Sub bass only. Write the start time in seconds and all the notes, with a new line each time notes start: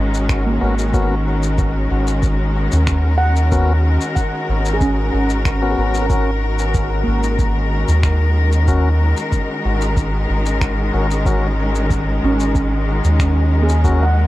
Already playing: G#1
0.61 G#1
1.91 G#1
2.72 D#2
4.49 G#1
5.13 G#1
5.78 G#1
7.07 G#1
7.88 D#2
9.65 G#1
10.29 G#1
10.93 G#1
12.23 G#1
13.04 D#2